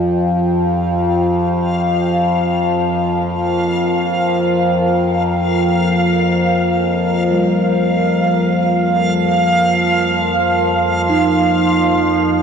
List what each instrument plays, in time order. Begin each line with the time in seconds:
Already playing: synth drone F2 F3, ambient pad F4 C5 G5
0.00 synth texture F5
1.01 ambient pad A#4
1.80 ambient pad F5
7.31 bronze metallophone G3
11.09 bronze metallophone D#4